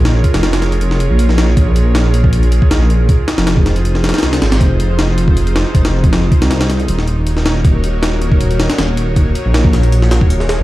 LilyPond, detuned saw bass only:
\new Staff \with { instrumentName = "Detuned saw bass" } { \clef bass \time 4/4 \key bes \minor \tempo 4 = 158 bes,,8 r16 f,,2 bes,,4~ bes,,16 | bes,,2~ bes,,8. r16 bes,,4 | r8. f,,2 r16 c,8 aes,,8 | f,,2~ f,,8. r16 f,,4~ |
f,,8 r16 c,4~ c,16 ees,,8. ees,,4~ ees,,16 | ees,,2~ ees,,8. r16 ees,,4~ | ees,,8 r16 bes,,2 ees,,8. ees,,16 ees,16 | }